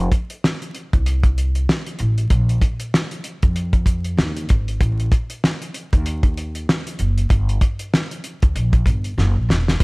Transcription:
0.12 kick, closed hi-hat
0.30 closed hi-hat
0.44 snare
0.62 closed hi-hat
0.75 closed hi-hat
0.93 C2, kick, closed hi-hat
1.06 closed hi-hat
1.23 kick, closed hi-hat
1.38 closed hi-hat
1.55 closed hi-hat
1.69 snare
1.87 closed hi-hat
1.99 A1, closed hi-hat
2.18 closed hi-hat
2.30 A#1, kick, closed hi-hat
2.49 closed hi-hat
2.61 kick, closed hi-hat
2.80 closed hi-hat
2.94 snare
3.11 closed hi-hat
3.24 closed hi-hat
3.43 F2, kick, closed hi-hat
3.56 closed hi-hat
3.73 kick, closed hi-hat
3.86 kick, closed hi-hat
4.05 closed hi-hat
4.17 D#2, snare
4.37 closed hi-hat
4.49 G#1, kick, closed hi-hat
4.68 closed hi-hat
4.81 A1, kick, closed hi-hat
5.00 closed hi-hat
5.12 kick, closed hi-hat
5.30 closed hi-hat
5.44 snare
5.62 closed hi-hat
5.74 closed hi-hat
5.93 D#2, kick, closed hi-hat
6.06 closed hi-hat
6.23 kick, closed hi-hat
6.37 closed hi-hat
6.55 closed hi-hat
6.69 snare
6.87 closed hi-hat
6.99 F#1, closed hi-hat
7.18 closed hi-hat
7.30 G1, kick, closed hi-hat
7.49 closed hi-hat
7.61 kick, closed hi-hat
7.79 closed hi-hat
7.94 snare
8.11 closed hi-hat
8.24 closed hi-hat
8.42 D2, kick, closed hi-hat
8.55 A#1, closed hi-hat
8.73 kick, closed hi-hat
8.85 G1, kick, closed hi-hat
9.04 closed hi-hat
9.18 F#1, snare
9.36 A#1
9.49 E1, snare
9.68 snare
9.80 F1, kick, closed hi-hat

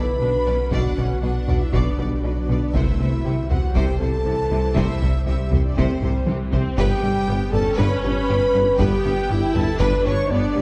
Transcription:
Already playing: B1 B2 D3 B3 E4 F#4 B4 B5
0.21 B1 B2 D4 B4
0.47 B1 B2 C#4 B4 D5
0.72 B1 B2 B3 D4 F#4 D5 F#5, taiko
0.97 B1 B2 C#4 B4 D5
1.22 B1 B2 D4 F#4 B4 F#5
1.47 B1 B2 D4 D5, taiko low-mid
1.61 E4 E5
1.72 B1 B2 B3 D4 D5, taiko
1.98 B1 B2 G3 B4 D5
2.23 B1 B2 F#3 D4 B4 D5
2.48 B1 B2 B3 B4 D5
2.73 C2 C3 G3 A3 E4 G4 C5 E5, taiko
2.99 C2 C3 C4 C5
3.25 C2 C3 G3 C4 G4
3.48 C2 C3 E3 F#4 C5 F#5, taiko low-mid
3.74 C2 C3 G4 C5 G5, taiko
3.98 C2 C3 C4 A4 A5
4.02 C5
4.25 C2 C3 E3 C4
4.29 G4
4.50 C2 C3 C4 C5
4.74 C2 C3 A3 E4 C5 E5, taiko
5.01 C2 C3 G3 C4 C5
5.25 C2 C3 C4 E4 G4 E5
5.51 C2 C3 E3 C5, taiko low-mid
5.65 D4 D5
5.76 C2 C3 A3 C4 C5, taiko
6.02 C2 C3 G3 C4 C5, taiko mid
6.27 C2 C3 E3 C4 G4, taiko high
6.53 C2 C3 C4 C5, taiko low
6.78 G1 G2 D3 G3 B3 G4 B4 G5, taiko
7.02 G1 G2 G3 G4 B4
7.28 G1 G2 B3 G4
7.52 G1 G2 B3 C#4 A4 B4 A5, taiko low-mid
7.76 G1 G2 G3 B4 B5, taiko
8.01 G1 G2 G4 B4 B5
8.28 G1 G2 G4
8.53 G1 G2 G4 B4
8.78 G1 G2 G3 B3 G4 B4 G5, taiko
9.03 G1 G2 G4 B4
9.30 G1 G2 E4 G4
9.54 G1 G2 B3 A4 B4 A5, taiko low-mid
9.78 G1 G2 G3 D4 B4 B5, taiko
10.04 G1 G2 G4 B4 C#5 C#6
10.29 G1 G2 B3 D4 G4 D5
10.55 G1 G2 G3 G4 B4

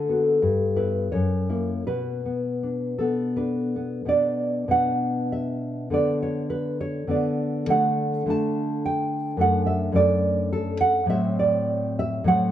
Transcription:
Already playing: D3 A4
0.09 B3 F#4
0.42 G2
0.76 B3 E4 B4
1.12 F#2 C#5
1.49 A#3 E4
1.87 B2 B4
2.25 B3
2.63 D4
2.98 B3 A4
3.37 D4 B4
3.76 B3
4.05 B2 B3 D4 D5
4.68 B2 B3 D4 F#5
5.32 E5
5.90 D3 B3 D4 D5
6.22 C#5
6.50 B4
6.81 C#5
7.07 D3 B3 D4 D5
7.66 D3 A3 D4 F#5
8.26 D3 A3 D4
8.30 A5
8.86 G5
9.37 F#2 A3 D4
9.41 F#5
9.66 E5
9.92 F#2 A3 D4 D5
10.53 A4
10.81 F#5
11.06 A2 F#3
11.10 C4 E5
11.39 D5
11.99 E5
12.24 A2 F#3 C4 F#5

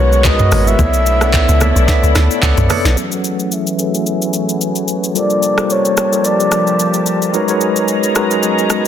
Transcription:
Already playing: B1 B2 G#3 B3 F#4 A#4 B4 C#5 D#5
0.12 shaker
0.24 G#3 F#4 A#4 B4 D#5, kick, clap, high bongo, shaker
0.39 mid tom, shaker
0.51 G#1 G#3 F#4 A#4 B4 C#5, cross-stick, open hi-hat, low conga, shaker
0.67 E5, low bongo, shaker
0.78 B1 A3 B3 D4 E4 A4 C#5 D5 E5, kick, low conga, shaker
0.93 shaker
1.06 shaker
1.20 B3 A4 C#5 D5 F#5, cross-stick, shaker
1.33 kick, clap, high bongo, shaker
1.49 C#2, shaker
1.60 B3 A4 C#5 D5 E5, cross-stick, low bongo, low conga, shaker
1.76 B1, high bongo, shaker
1.87 B3 A4 C#5 D5 E5, kick, snare, shaker
2.03 C#2, shaker
2.15 D2, cross-stick, snare, high bongo, low bongo, shaker
2.31 shaker
2.42 C#2 B3 A4 C#5 D5 F#5, kick, clap, high bongo, shaker
2.57 B1, mid tom, shaker
2.69 B3 A4 C#5 D5 F#5, cross-stick, open hi-hat, low conga, shaker
2.85 B1, snare, low bongo, shaker
2.96 E3 F#3 A3 B3 C#4 F#4 G#4 F#5 G#5, shaker
3.11 F#3 C#4 G#4 A4 B4 C#5, shaker
3.24 shaker
3.39 shaker
3.52 E5, shaker
3.67 shaker
3.78 F#3 C#4 G#4 A4 B4 C#5, shaker
3.94 shaker
4.06 shaker
4.22 shaker
4.33 shaker
4.49 shaker
4.61 shaker
4.76 shaker
4.88 shaker
5.04 shaker
5.14 C3 F3 G3 A#3 F4 G4 A4 A#4 C5 D5 A5, shaker
5.30 shaker
5.43 shaker
5.57 G3 F4 A4 A#4 C5, cross-stick, shaker
5.70 C#5, shaker
5.85 shaker
5.97 cross-stick, shaker
6.11 G3 F4 A4 A#4 C5, shaker
6.21 D5, shaker
6.26 D5
6.40 shaker
6.52 cross-stick, shaker
6.67 shaker
6.79 shaker
6.94 shaker
7.06 shaker
7.22 shaker
7.33 F#3 G#3 B3 C#4 D#4 F#4 G#4 A#4 B4 C#5 A#5, shaker
7.48 G#3 D#4 F#4 A#4 B4 C#5, shaker
7.61 shaker
7.76 shaker
7.88 shaker
8.03 shaker
8.15 G#3 D#4 F#4 A#4 B4 D#5, cross-stick, shaker
8.31 shaker
8.43 shaker
8.58 shaker
8.70 cross-stick, shaker

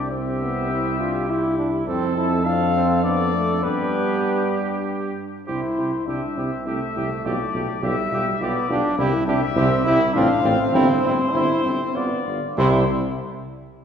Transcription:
Already playing: C2 D4
0.10 C4 G4 E5
0.42 B3
0.71 C4 E4
1.00 D4 F4
1.29 E4 G4
1.58 D4
1.87 F2 C4 A4
2.15 E4 A4
2.45 C4 D4 A4 F5
2.75 C4
3.03 B3 D4 A4 D5
3.34 A3
3.63 G2 B3 D4 G4 B4
5.47 C2 E4 G4 C5
5.78 C2 E4 G4
6.07 C2 D4 E4 G4 E5
6.37 C2 C4 E4 G4
6.66 C2 A3 E4 G4 E5
6.96 C2 E4 G4
7.25 B1 F4 G4 D5
7.54 B1 F4 G4
7.83 B1 G3 F4 G4 E5
8.11 B1 F4 G4
8.41 B1 B3 F4 G4 D5
8.70 B1 D4 F4 G4
8.98 C2 E4 G4
9.27 C2 D4 E4 G4 E5
9.55 C2 C4 E4 G4
9.85 C2 E4 G4
10.14 A1 C4 D4 F4 F5
10.44 A1 C4 F4
10.74 G1 C4 E4 C5
11.04 G1 C4 E4
11.33 G1 C4 E4
11.64 G1 C4 E4
11.94 G1 B3 F4 D5
12.26 G1 B3 F4
12.57 C2 C3 G3 E4 C5

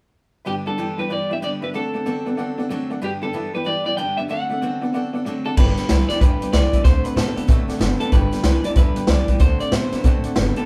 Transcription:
0.45 G2 D3 G3 B3 D4 G4 B4 D5 G5
0.65 G2 D3 G3 B3 D4 G4 A4 B4 D5 F#5
0.77 G2 D3 E3 G3 B3 D4 G4 B4 D5 G5
0.97 G2 E3 G3 B3 D4 G4 B4 D5 G5
1.09 G2 E3 G3 B3 D4 G4 B4 D5 G5
1.29 G2 E3 B3 D4 G4 B4 D5 E5 G5
1.33 G3
1.41 G2 D3 G3 B3 D4 G4 B4 D5 G5
1.61 G2 D3 G3 B3 D4 G4 B4 D5 E5
1.73 D3 F#3 A3 C4 D4 A4 D5 F#5
1.93 D3 A3 C4 D4 A4 D5 F#5
2.05 D3 F#3 B3 C4 D4 A4 D5 F#5
2.25 D3 B3 C4 D4 A4 D5 F#5
2.37 D3 F#3 B3 C4 D4 A4 D5 F#5
2.58 D3 B3 D4 A4 D5 F#5
2.62 C4
2.69 D3 F#3 A3 C4 D4 A4 D5 F#5
2.90 D3 A3 C4 D4 A4 D5 F#5
3.02 G2 D3 G3 B3 D4 G4 B4 D5 G5
3.22 G2 D3 G3 B3 D4 G4 A4 B4 D5 G5
3.33 G2 D3 E3 G3 B3 D4 G4 B4 D5 E5
3.54 G2 E3 G3 B3 D4 G4 B4 D5 G5
3.65 G2 E3 G3 B3 D4 G4 B4 D5 G5
3.84 G2 E3 G3 B3 D4 G4 B4 D5 G5
3.97 G2 D3 G3 B3 D4 G4 B4 D5 G5 A5
4.16 G2 D3 B3 D4 G4 B4 D5 E5 F#5
4.21 G3
4.28 D3 F#3 A3 C4 D4 A4 D5 F#5
4.49 D3 A3 C4 D4 A4 D5 E5
4.61 D3 F#3 B3 C4 D4 A4 D5 F#5
4.81 D3 B3 D4 A4 D5 F#5
4.85 C4
4.93 D3 F#3 B3 C4 D4 A4 D5 F#5
5.13 D3 B3 D4 A4 D5 F#5
5.18 C4
5.24 D3 F#3 A3 C4 D4 A4 D5 F#5
5.45 D3 A3 C4 D4 A4 D5 F#5
5.56 G1 G2 D3 G3 B3 D4 G4 B4 D5 G5, kick, crash
5.77 G3 B3 D4 G4 B4 D5 G5, muted upright bass stroke, snare, closed hi-hat
5.89 C2 G2 E3 G3 B3 D4 G4 B4 D5 G5, snare, closed hi-hat
6.09 G2 E3 G3 B3 D4 G4 B4 D5 G5, snare, closed hi-hat
6.21 E2 G2 D3 G3 B3 D4 G4 B4 D5 G5, kick, closed hi-hat
6.40 G3 B3 D4 G4 B4 D5 G5, muted upright bass stroke, closed hi-hat
6.52 C2 G2 E3 G3 B3 D4 G4 B4 D5 G5, snare, closed hi-hat
6.72 G2 E3 G3 B3 D4 G4 B4 D5 E5, muted upright bass stroke, kick, closed hi-hat
6.84 D2 D3 F#3 A3 C4 D4 A4 C5 D5 F#5, kick, snare, closed hi-hat
7.03 C4 D4 A4 B4 D5 F#5, closed hi-hat
7.16 C3 D3 F#3 B3 C4 D4 A4 D5 F#5, snare, closed hi-hat
7.35 D3 B3 C4 D4 A4 D5 F#5, muted upright bass stroke, closed hi-hat
7.47 B2 D3 F#3 A3 C4 D4 A4 D5 E5, kick, closed hi-hat
7.68 C4 D4 A4 D5 F#5, muted upright bass stroke, snare, closed hi-hat
7.79 F#1 D3 F#3 B3 C4 D4 A4 D5 F#5, snare, closed hi-hat
7.99 D3 B3 C4 D4 A4 D5 F#5, muted upright bass stroke, closed hi-hat
8.11 G1 G2 D3 G3 B3 D4 G4 B4 D5 G5, kick, closed hi-hat
8.31 G3 B3 D4 G4 B4 D5 G5, muted upright bass stroke, snare, closed hi-hat
8.43 C2 G2 E3 G3 B3 D4 G4 B4 D5 G5, snare, closed hi-hat
8.64 G2 E3 G3 B3 D4 G4 B4 D5 A5, muted upright bass stroke, closed hi-hat
8.75 E2 G2 D3 G3 B3 D4 G4 B4 D5 E5, kick, closed hi-hat
8.95 G3 B3 D4 G4 B4 D5 G5, muted upright bass stroke, closed hi-hat
9.07 C2 G2 E3 G3 B3 D4 G4 B4 D5 G5, snare, closed hi-hat
9.28 G2 E3 G3 B3 D4 G4 B4 D5 G5, kick, closed hi-hat
9.39 D2 D3 F#3 A3 C4 D4 A4 C5 D5 F#5, kick, closed hi-hat
9.59 C4 D4 A4 D5 F#5, muted upright bass stroke, closed hi-hat
9.72 C3 D3 F#3 B3 C4 D4 A4 C5 D5 E5, snare, closed hi-hat
9.92 D3 B3 C4 D4 A4 D5 F#5, muted upright bass stroke, snare, closed hi-hat
10.04 B2 D3 F#3 A3 C4 D4 A4 D5 F#5, kick, closed hi-hat
10.24 C4 D4 A4 D5 F#5, muted upright bass stroke, closed hi-hat
10.35 F#1 D3 F#3 B3 C4 D4 A4 D5 F#5, snare, closed hi-hat
10.55 D3 B3 C4 D4 A4 D5 F#5, muted upright bass stroke, closed hi-hat

